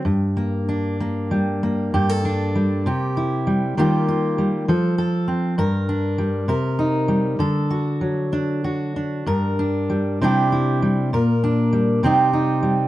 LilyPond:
\new Staff \with { instrumentName = "Steel-string acoustic guitar" } { \time 6/8 \key g \minor \tempo 4. = 65 << { r8 bes8 d'8 bes4 bes8 | g'16 a'16 d'4 g'8 e'4 | <g bes f' g'>8 f'4 a'8 a'4 | bes'8 d'4 bes'8 ees'4 |
a'8 fis'4 d'8 fis'8 d'8 | bes'8 d'4 <g d' e' g'>8 e'4 | bes'8 d'4 <g c' ees' g'>8 ees'4 | } \\ { g,2 g4 | g,4 g8 c4 g8 | ees4 g8 f4 c'8 | g,4 g8 c4 g8 |
d4 fis2 | g,4 g8 c4 g8 | bes,4 g8 c4 g8 | } >> }